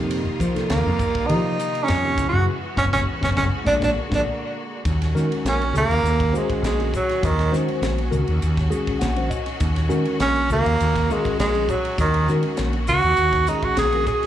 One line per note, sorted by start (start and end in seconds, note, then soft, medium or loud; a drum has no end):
0.00 0.22 F2 loud
0.00 0.39 C3 medium
0.00 2.16 D#3 medium
0.00 0.40 F3 medium
0.00 2.18 G3 medium
0.00 0.40 A#3 medium
0.00 2.17 A#3 medium
0.00 0.40 D#4 medium
0.00 2.17 F4 medium
0.00 0.40 G4 medium
0.11 ride medium
0.27 muted fretless electric bass stroke soft
0.40 0.72 F3 medium
0.40 kick medium
0.40 hi-hat pedal medium
0.40 ride medium
0.54 0.89 C3 medium
0.54 0.89 F3 medium
0.54 0.89 A#3 medium
0.54 0.90 D#4 medium
0.54 0.90 A4 medium
0.54 snare soft
0.54 ride medium
0.69 0.84 D#2 medium
0.69 1.28 A#3 medium
0.69 snare loud
0.69 ride medium
0.86 0.99 F2 medium
0.99 1.07 D#4 soft
0.99 1.07 G4 soft
0.99 kick medium
0.99 hi-hat pedal medium
0.99 ride medium
1.15 muted fretless electric bass stroke soft
1.15 kick medium
1.27 1.87 C3 medium
1.27 1.87 F3 medium
1.27 1.56 F3 medium
1.27 1.87 A#3 medium
1.27 1.85 D#4 loud
1.27 1.87 D#4 medium
1.27 1.87 G4 medium
1.27 ride medium
1.59 hi-hat pedal loud
1.59 ride medium
1.75 ride medium
1.84 2.28 C#4 loud
1.88 2.16 F2 medium
1.88 snare loud
1.88 ride medium
2.03 2.15 C3 medium
2.03 2.15 F3 medium
2.03 2.15 A#3 medium
2.03 2.15 D#4 medium
2.03 2.15 G4 medium
2.18 2.49 C#3 medium
2.18 3.67 E3 medium
2.18 2.49 F#3 medium
2.18 4.85 G#3 medium
2.18 2.49 B3 medium
2.18 3.67 B3 medium
2.18 2.49 E4 medium
2.18 4.85 F#4 medium
2.18 muted fretless electric bass stroke soft
2.18 kick medium
2.18 snare soft
2.18 hi-hat pedal medium
2.18 ride medium
2.29 2.44 F#4 medium
2.33 2.47 F#2 medium
2.76 2.89 F#1 loud
2.76 2.88 F#3 medium
2.76 2.87 B3 medium
2.76 2.87 C#4 medium
2.76 2.85 C#4 loud
2.76 kick medium
2.76 snare medium
2.93 3.04 F#1 medium
2.93 3.03 F#3 loud
2.93 3.03 B3 medium
2.93 3.00 C#4 loud
2.93 3.02 C#4 medium
2.93 kick medium
2.93 snare medium
3.21 3.33 F#1 medium
3.21 3.31 F#3 loud
3.21 3.31 B3 loud
3.21 3.31 C#4 loud
3.21 3.31 C#4 medium
3.21 kick medium
3.21 snare medium
3.35 3.49 F#1 medium
3.35 3.46 F#3 loud
3.35 3.46 B3 medium
3.35 3.46 C#4 loud
3.35 3.45 C#4 medium
3.35 kick loud
3.35 snare medium
3.64 3.78 A#1 medium
3.64 3.75 G#3 loud
3.64 3.75 A#3 loud
3.64 3.76 D4 loud
3.64 3.74 D4 medium
3.64 kick medium
3.64 snare medium
3.69 4.86 D3 medium
3.69 4.86 A#3 medium
3.80 3.93 A#1 medium
3.80 3.90 G#3 medium
3.80 3.90 A#3 loud
3.80 3.90 D4 loud
3.80 3.90 D4 medium
3.80 kick medium
3.80 snare medium
4.09 4.23 A#1 loud
4.09 4.20 G#3 medium
4.09 4.20 A#3 medium
4.09 4.20 D4 medium
4.09 kick medium
4.09 snare medium
4.15 4.21 D4 medium
4.85 5.13 D#2 loud
4.85 14.27 D#3 medium
4.85 14.27 F#3 medium
4.85 14.27 C#4 medium
4.85 14.27 F#4 medium
4.85 kick loud
4.85 hi-hat pedal medium
4.85 ride medium
5.02 snare soft
5.02 ride medium
5.14 5.62 D#3 loud
5.14 5.29 D#3 medium
5.14 5.62 G#3 medium
5.14 5.62 C#4 medium
5.14 5.62 F#4 loud
5.14 5.62 A#4 loud
5.14 snare soft
5.14 hi-hat pedal medium
5.32 ride medium
5.45 5.72 A#1 medium
5.45 5.76 C#4 medium
5.45 snare loud
5.45 hi-hat pedal medium
5.45 ride medium
5.62 ride medium
5.73 5.88 C#2 medium
5.73 5.86 D#3 medium
5.73 5.86 G#3 medium
5.73 5.86 C#4 medium
5.73 5.86 F#4 medium
5.73 5.87 G#4 medium
5.73 hi-hat pedal medium
5.77 6.34 A#3 loud
5.89 6.03 D#2 medium
5.89 ride medium
6.03 6.31 D#2 medium
6.03 hi-hat pedal medium
6.03 ride medium
6.20 kick medium
6.20 ride medium
6.32 6.68 D#3 medium
6.32 6.68 G#3 medium
6.32 6.68 C#4 medium
6.32 6.69 F#4 medium
6.32 6.69 C5 medium
6.32 hi-hat pedal medium
6.37 6.65 G#3 medium
6.50 kick medium
6.50 ride medium
6.62 6.90 A#1 loud
6.62 6.94 G#3 medium
6.62 snare loud
6.62 hi-hat pedal medium
6.62 ride medium
6.78 6.90 D#3 medium
6.78 6.90 G#3 medium
6.78 6.90 C#4 medium
6.78 6.91 F#4 medium
6.78 6.91 G#4 medium
6.78 ride medium
6.92 7.26 F#3 medium
6.92 7.01 F#4 soft
6.92 7.01 A#4 soft
6.92 kick medium
6.92 hi-hat pedal medium
7.09 snare soft
7.09 ride medium
7.23 7.50 D#2 loud
7.23 7.53 D#3 medium
7.23 kick loud
7.23 hi-hat pedal medium
7.23 ride medium
7.39 snare soft
7.39 ride medium
7.52 7.99 D#3 medium
7.52 7.67 D#3 medium
7.52 7.99 G#3 medium
7.52 7.99 C#4 medium
7.52 7.99 F#4 medium
7.52 7.99 C5 loud
7.52 snare soft
7.52 hi-hat pedal medium
7.68 ride medium
7.81 8.09 A#1 medium
7.81 snare loud
7.81 hi-hat pedal medium
7.81 ride medium
7.98 ride medium
8.11 8.26 C#2 medium
8.11 8.24 D#3 medium
8.11 8.24 G#3 medium
8.11 8.24 C#4 medium
8.11 8.24 F#4 medium
8.11 8.24 A#4 medium
8.11 hi-hat pedal medium
8.26 8.41 D#2 medium
8.26 8.34 F#4 soft
8.26 8.34 G#4 soft
8.26 ride medium
8.42 8.70 D#2 medium
8.42 hi-hat pedal medium
8.42 ride medium
8.57 kick medium
8.57 snare soft
8.57 ride medium
8.69 9.06 D#3 loud
8.69 9.05 G#3 medium
8.69 9.06 C#4 medium
8.69 9.06 F#4 loud
8.69 9.06 G#4 loud
8.69 hi-hat pedal medium
8.87 kick medium
8.87 ride medium
8.99 9.29 A#1 loud
8.99 9.28 F#5 medium
8.99 snare loud
8.99 hi-hat pedal medium
8.99 ride medium
9.16 9.28 D#3 medium
9.16 9.28 G#3 medium
9.16 9.28 C#4 medium
9.16 9.28 F#4 medium
9.16 9.28 C5 medium
9.16 ride medium
9.29 9.38 F#4 soft
9.29 9.38 A#4 soft
9.29 9.58 D#5 medium
9.29 kick medium
9.29 hi-hat pedal medium
9.46 snare soft
9.46 ride medium
9.60 9.88 D#2 loud
9.60 kick loud
9.60 hi-hat pedal medium
9.60 ride medium
9.76 snare soft
9.76 ride medium
9.89 10.37 D#3 loud
9.89 10.05 D#3 medium
9.89 10.37 G#3 loud
9.89 10.37 C#4 loud
9.89 10.37 F#4 loud
9.89 10.37 A#4 loud
9.89 hi-hat pedal medium
10.05 ride medium
10.20 10.47 A#1 medium
10.20 10.50 C#4 loud
10.20 snare loud
10.20 hi-hat pedal medium
10.20 ride medium
10.36 ride medium
10.50 10.64 C#2 medium
10.50 10.62 D#3 medium
10.50 10.63 G#3 medium
10.50 11.14 A#3 loud
10.50 10.63 C#4 medium
10.50 10.63 F#4 medium
10.50 10.63 A#4 medium
10.50 hi-hat pedal medium
10.66 10.79 D#2 medium
10.66 ride medium
10.80 11.08 D#2 medium
10.80 hi-hat pedal medium
10.80 ride medium
10.96 kick medium
10.96 snare soft
10.96 ride medium
11.09 11.45 D#3 medium
11.09 11.44 G#3 medium
11.09 11.39 G#3 medium
11.09 11.45 C#4 medium
11.09 11.45 F#4 medium
11.09 11.45 A#4 loud
11.09 hi-hat pedal medium
11.25 kick medium
11.25 ride medium
11.39 11.67 A#1 loud
11.39 11.72 G#3 loud
11.39 snare loud
11.39 hi-hat pedal medium
11.39 ride medium
11.54 11.66 D#3 medium
11.54 11.66 G#3 medium
11.54 11.66 C#4 medium
11.54 11.66 F#4 medium
11.54 11.66 G#4 medium
11.54 ride medium
11.69 11.99 F#3 medium
11.69 11.77 F#4 soft
11.69 11.78 C#5 soft
11.69 kick medium
11.69 hi-hat pedal medium
11.85 ride medium
11.98 12.26 D#2 loud
11.98 12.29 D#3 medium
11.98 kick loud
11.98 hi-hat pedal medium
11.98 ride medium
12.14 ride medium
12.28 12.43 D#3 medium
12.28 12.75 D#3 medium
12.28 12.75 G#3 medium
12.28 12.75 C#4 medium
12.28 12.75 F#4 medium
12.28 12.76 A#4 loud
12.28 snare soft
12.28 hi-hat pedal medium
12.43 ride medium
12.57 12.86 A#1 medium
12.57 snare loud
12.57 hi-hat pedal medium
12.57 ride medium
12.73 ride medium
12.87 13.03 C#2 medium
12.87 13.01 D#3 medium
12.87 13.00 G#3 medium
12.87 13.01 C#4 medium
12.87 13.50 F#4 loud
12.87 13.01 F#4 medium
12.87 13.01 A#4 medium
12.87 hi-hat pedal medium
13.02 13.17 D#2 medium
13.02 ride medium
13.17 13.45 D#2 medium
13.17 hi-hat pedal medium
13.17 ride medium
13.33 kick medium
13.33 snare soft
13.33 ride medium
13.47 13.83 D#3 medium
13.47 13.83 G#3 medium
13.47 13.83 C#4 medium
13.47 13.66 D#4 medium
13.47 13.83 F#4 medium
13.47 13.83 G#4 medium
13.47 hi-hat pedal medium
13.62 13.77 F#4 medium
13.62 kick medium
13.62 ride medium
13.77 14.04 A#1 loud
13.77 14.07 G#4 medium
13.77 snare loud
13.77 hi-hat pedal medium
13.77 ride medium
13.93 14.04 D#3 medium
13.93 14.04 G#3 medium
13.93 14.04 C#4 medium
13.93 14.05 F#4 medium
13.93 14.05 A#4 medium
13.93 ride medium
14.06 14.15 F#4 soft
14.06 14.27 G#4 medium
14.06 14.15 A#4 soft
14.06 kick medium
14.06 hi-hat pedal medium
14.23 snare soft
14.23 ride medium